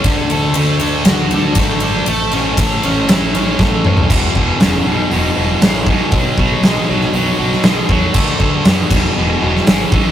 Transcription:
<<
  \new Staff \with { instrumentName = "Distorted electric guitar" } { \clef bass \time 4/4 \key e \mixolydian \tempo 4 = 118 d8 a8 a8 d'8 fis'8 d'8 a8 d'8 | a8 cis'8 a8 cis'8 e'8 cis'8 a8 cis'8 | <e, b,>8 <e, b,>8 <e, cis>8 <e, b,>8 <e, b,>8 <e, b,>8 <e, cis>8 <e, b,>8 | <b, fis>8 <b, fis>8 <b, gis>8 <b, fis>8 <b, fis>8 <b, fis>8 <b, gis>8 <b, fis>8 |
<d a>8 <d a>8 <d b>8 <e, b,>8 <e, b,>8 <e, b,>8 <e, cis>8 <a, e>8 | }
  \new Staff \with { instrumentName = "Fingered electric bass" } { \clef bass \time 4/4 \key e \mixolydian d,8 d,8 d,8 d,8 d,8 d,8 gis,,4 | a,,8 a,,8 a,,8 a,,8 a,,8 a,,8 a,,4 | e,,8 e,,8 e,,8 b,,8 e,,8 e,,8 a,,4 | b,,8 b,,8 b,,8 b,,8 b,,8 b,,8 b,,8 e,8 |
d,8 d,8 fis,8 e,,8 e,,8 e,,8 gis,,8 a,,8 | }
  \new DrumStaff \with { instrumentName = "Drums" } \drummode { \time 4/4 <bd cymr>8 cymr8 cymr8 cymr8 <cymr sn>8 cymr8 <bd cymr>8 cymr8 | cymr8 cymr8 <bd cymr>8 cymr8 <cymr sn>8 cymr8 <bd sn>8 toml16 tomfh16 | <cymc bd>8 bd8 <hho sn>4 hho4 <hho sn>8 bd8 | <hho bd>8 bd8 <hho sn>8. sn16 hho8. sn16 <hho sn>8 bd8 |
<cymc bd>8 bd8 <hho sn>8 <cymc bd>8 r8. sn16 <hho sn>8 bd8 | }
>>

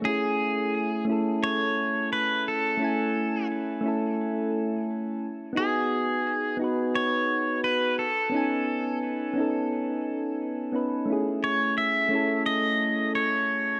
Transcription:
<<
  \new Staff \with { instrumentName = "Pedal steel guitar" } { \time 4/4 \key a \lydian \tempo 4 = 87 gis'4. r8 cis''4 b'8 a'8~ | a'4 r2. | gis'4. r8 cis''4 b'8 a'8~ | a'4 r2. |
r8 cis''8 e''4 dis''4 cis''4 | }
  \new Staff \with { instrumentName = "Synth keys" } { \time 4/4 \key a \lydian <a cis' e' gis'>4. <a cis' e' a'>2~ <a cis' e' a'>8 | <a cis' e' gis''>4. <a cis' e' a'>2 r8 | <b dis' fis' gis'>4. <b dis' fis' b'>2 r8 | <b cis' dis' gis''>4. <b cis' dis' a'>2 <b cis' dis' b'>16 r16 |
<a cis' e' gis'>4. <a cis' e' a'>2~ <a cis' e' a'>8 | }
>>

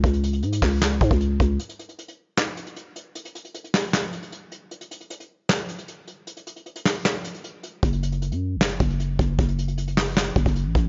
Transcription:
<<
  \new Staff \with { instrumentName = "808-style bass" } { \clef bass \time 4/4 \key cis \phrygian \tempo 4 = 154 cis,4 gis,8 cis,4 gis,16 cis,8. cis,8 | r1 | r1 | r1 |
r1 | fis,,4~ fis,,16 fis,8~ fis,32 fis,,8~ fis,,32 fis,,4 fis,,8 | fis,,2~ fis,,8 fis,,16 fis,,8 a,,16 a,,8 | }
  \new DrumStaff \with { instrumentName = "Drums" } \drummode { \time 4/4 <hh bd>16 hh16 hh16 hh16 hh16 hh16 <hc hho bd sn>8 <hc hhp sn>16 hh16 <hh bd>16 <hh bd>16 hh8 <hh bd>8 | hh16 hh16 hh16 hh16 hh16 hh8. <hc sn>16 hh16 hh16 hh16 hh8 hh8 | hh16 hh16 hh16 hh16 hh16 hh16 <hc hho sn>8 <hc hhp sn>16 hh16 hh16 hh16 hh8 hh8 | hh16 hh16 hh16 hh16 hh16 hh8. <hc sn>16 hh16 hh16 hh16 hh8 hh8 |
hh16 hh16 hh16 hh16 hh16 hh16 <hc hho sn>8 <hc hhp sn>16 hh16 hh16 hh16 hh8 hh8 | <hh bd>16 hh16 hh16 hh16 hh16 hh8. <hc sn>16 hh16 <hh bd>16 hh16 hh8 <hh bd>8 | <hh bd>16 hh16 hh16 hh16 hh16 hh16 <hc hho sn>8 <hc hhp sn>16 hh16 <hh bd>16 <hh bd>16 hh8 <hh bd>8 | }
>>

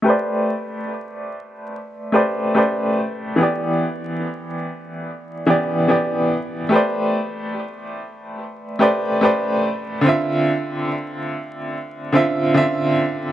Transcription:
\new Staff \with { instrumentName = "Upright piano" } { \time 4/4 \key a \minor \tempo 4 = 72 <a g' b' c'' d''>2~ <a g' b' c'' d''>8 <a g' b' c'' d''>8 <a g' b' c'' d''>4 | <e b g' d''>2~ <e b g' d''>8 <e b g' d''>8 <e b g' d''>4 | <a g' b' c'' d''>2~ <a g' b' c'' d''>8 <a g' b' c'' d''>8 <a g' b' c'' d''>4 | <d c' f' e''>2~ <d c' f' e''>8 <d c' f' e''>8 <d c' f' e''>4 | }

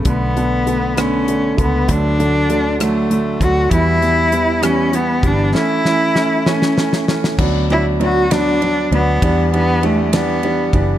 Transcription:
<<
  \new Staff \with { instrumentName = "Cello" } { \time 6/8 \key d \major \tempo 4. = 66 b4. cis'4 b8 | d'4. a4 fis'8 | e'4. cis'8 b8 d'8 | e'4. cis'4 r8 |
r8 e'8 fis'8 d'4 b8~ | b8 b8 a8 b4 r8 | }
  \new Staff \with { instrumentName = "Grand piano" } { \clef bass \time 6/8 \key d \major <d a b>8 <d a b>8 <d a b>8 <d a b>8 <d a b>8 <d a b>8 | <d fis a>8 <d fis a>8 <d fis a>8 <d fis a>8 <d fis a>8 <d fis a>8 | <e g b>8 <e g b>8 <e g b>8 <e g b>8 <e g b>8 <e g b>8 | <e a cis'>8 <e a cis'>8 <e a cis'>8 <e a cis'>8 <e a cis'>8 <e a cis'>8 |
<fis b d'>8 <fis b d'>8 <fis b d'>8 <fis b d'>8 <fis b d'>8 <fis b d'>8 | <e g d'>8 <e g d'>8 <e g d'>8 <e g d'>8 <e g d'>8 <e g d'>8 | }
  \new Staff \with { instrumentName = "Fingered electric bass" } { \clef bass \time 6/8 \key d \major b,,2~ b,,8 cis,8 | d,2~ d,8 d,8 | e,2~ e,8 g,,8 | r2. |
d,2~ d,8 d,8 | e,2~ e,8 fis,,8 | }
  \new DrumStaff \with { instrumentName = "Drums" } \drummode { \time 6/8 <hh bd>8 hh8 hh8 <hh ss>8 hh8 <hh bd>8 | <hh bd>8 hh8 hh8 <hh ss>8 hh8 <hh bd>8 | <hh bd>8 hh8 hh8 <hh ss>8 hh8 <hh bd>8 | sn8 sn8 sn8 sn16 sn16 sn16 sn16 sn16 sn16 |
<cymc bd>8 cymr8 cymr8 <cymr sn>8 cymr8 cymr8 | <bd cymr>8 cymr8 cymr8 <cymr sn>8 cymr8 <bd cymr>8 | }
>>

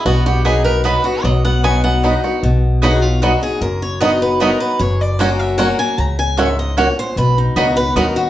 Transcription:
<<
  \new Staff \with { instrumentName = "Steel-string acoustic guitar" } { \time 3/4 \key b \major \tempo 4 = 152 fis'8 g'8 gis'8 ais'8 b'8 fis'8 | dis''8 fis''8 gis''8 fis''4 r8 | r4 gis'8 eis'8 fis'8 gis'8 | ais'8 cis''8 dis''8 b'8 ais'8 b'8 |
cis''8 d''8 dis''8 e''8 fis''8 gis''8 | ais''8 gis''8 e''8 dis''8 cis''8 c''8 | b'8 dis'8 fis'8 b'8 ais'8 fis'8 | }
  \new Staff \with { instrumentName = "Mandolin" } { \time 3/4 \key b \major r4 <b fis' dis'' b''>8 r8 <b fis' dis'' b''>8 r8 | r4 <b fis' dis'' b''>8 r8 <b fis' dis'' b''>8 r8 | r4 <b fis' dis'' b''>8 r8 <b fis' dis'' b''>8 r8 | r4 <b fis' dis'' b''>8 r8 <b fis' dis'' b''>8 r8 |
r4 <ais fis' cis'' fis''>8 r8 <ais fis' cis'' fis''>8 r8 | r4 <ais fis' cis'' fis''>8 r8 <ais fis' cis'' fis''>8 r8 | r4 <b fis' dis'' b''>8 r8 <b fis' dis'' b''>8 r8 | }
  \new Staff \with { instrumentName = "Five-string banjo" } { \time 3/4 \key b \major b8 fis'8 dis'8 b'8 b8 fis'8 | fis8 b8 fis'8 b8 dis'8 fis'8 | r4 <b dis' fis'>8 r8 <b dis' fis'>8 r8 | r4 <b dis' fis'>8 r8 <b dis' fis'>8 r8 |
r4 <cis' fis'>8 r8 <cis' fis'>8 r8 | r4 <cis' fis'>8 r8 <cis' fis'>8 r8 | r4 <b dis' fis'>8 r8 <b dis' fis'>8 r8 | }
  \new Staff \with { instrumentName = "Steel-string acoustic guitar" } { \time 3/4 \key b \major << { r4 <fis b dis' fis'>4 <fis b dis' fis'>8 <dis' fis'>8 | r4 <fis b dis' fis'>4 <fis b dis' fis'>8 <dis' fis'>8 | r4 <fis b dis' fis'>8 <dis' fis'>8 <fis b dis' fis'>8 <dis' fis'>8 | r4 <fis b dis' fis'>4 <fis b dis' fis'>4 |
r4 <fis ais cis' fis'>4 <fis ais cis' fis'>4 | r2. | r4 <fis b dis' fis'>8 <dis' fis'>8 <fis b dis' fis'>8 <dis' fis'>8 | } \\ { b,2 r4 | b,2 r4 | b,2 r4 | fis,2 r4 |
fis,2 r4 | cis4 gis,4 ais,4 | b,2 r4 | } >> }
  \new Staff \with { instrumentName = "Upright bass" } { \clef bass \time 3/4 \key b \major b,,2. | b,,2. | b,,2. | fis,,2. |
fis,,2. | cis,2. | b,,4 cis,4 dis,4 | }
>>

